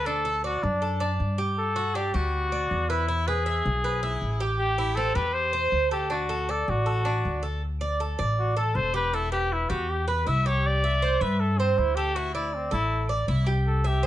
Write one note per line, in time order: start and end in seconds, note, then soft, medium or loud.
0.00 0.58 D2 medium
0.06 0.25 D4 medium
0.06 0.44 A4 loud
0.25 0.44 A4 medium
0.44 0.65 F#4 medium
0.44 0.81 D5 medium
0.63 1.16 F#2 medium
0.63 1.12 D4 medium
0.82 1.00 A4 medium
1.00 1.37 D4 medium
1.20 2.08 G2 medium
1.38 1.75 G4 medium
1.58 1.97 A4 medium
1.76 1.95 F#4 medium
1.95 2.14 D4 medium
1.95 2.16 G4 medium
2.14 2.67 D2 medium
2.14 2.51 G3 medium
2.14 2.91 F#4 medium
2.52 2.89 D5 medium
2.71 3.59 E2 medium
2.89 3.29 E4 loud
2.89 3.08 B4 medium
3.08 3.27 E4 medium
3.28 4.41 G#4 medium
3.28 3.46 B4 medium
3.46 3.83 E5 medium
3.65 4.18 B1 medium
3.84 4.02 B4 medium
4.03 4.40 E4 medium
4.22 5.10 A1 medium
4.40 4.77 G4 medium
4.58 4.97 G4 medium
4.78 4.97 E4 medium
4.95 5.15 C4 medium
4.95 5.16 A4 medium
5.15 5.69 E2 medium
5.15 5.53 G4 medium
5.15 5.35 B4 medium
5.33 5.91 C5 loud
5.53 5.90 C5 medium
5.72 6.61 D2 medium
5.91 6.13 G4 medium
5.91 6.10 A4 medium
6.10 6.29 D4 medium
6.10 6.52 F#4 medium
6.29 6.48 A4 medium
6.49 6.71 A4 medium
6.49 6.86 D5 medium
6.68 7.21 A1 medium
6.68 7.44 F#4 medium
6.86 7.05 A4 medium
7.05 7.42 D4 medium
7.25 8.13 D2 medium
7.43 7.61 A4 medium
7.81 7.99 D5 medium
8.00 8.19 A4 medium
8.19 8.72 A1 medium
8.19 8.56 D5 medium
8.39 8.56 F#4 medium
8.57 8.93 A4 medium
8.57 8.77 A4 medium
8.75 9.64 E1 medium
8.75 8.94 C5 loud
8.94 9.13 G4 medium
8.94 9.16 B4 medium
9.13 9.32 E4 medium
9.13 9.31 A4 medium
9.32 9.54 G4 loud
9.32 9.69 B4 medium
9.52 9.71 E4 medium
9.69 10.23 E2 medium
9.69 9.91 F#4 medium
9.69 10.07 G4 medium
9.90 10.08 G4 medium
10.08 10.26 B4 medium
10.08 10.29 B4 medium
10.27 11.15 C2 medium
10.27 10.45 E4 medium
10.27 10.48 E5 loud
10.46 10.82 G4 medium
10.46 10.68 C#5 medium
10.66 11.23 D5 loud
10.84 11.02 E5 medium
11.02 11.21 C5 medium
11.21 11.74 G2 loud
11.21 11.41 B4 medium
11.21 11.58 E5 medium
11.40 11.60 A4 medium
11.58 11.79 C4 medium
11.58 11.96 C5 medium
11.78 12.66 D2 medium
11.78 11.96 E4 medium
11.95 12.17 G4 loud
11.95 12.15 A4 medium
12.15 12.34 E4 medium
12.15 12.33 F#4 medium
12.34 12.56 E4 medium
12.34 12.71 D5 medium
12.54 12.72 C4 medium
12.71 13.25 A1 medium
12.71 13.07 E4 medium
12.71 13.08 A4 medium
13.09 13.28 D5 medium
13.28 14.07 C2 medium
13.28 13.47 E4 medium
13.46 13.83 G4 medium
13.67 13.88 A4 medium
13.84 14.07 G4 loud
13.84 14.03 E5 medium
14.03 14.07 C5 medium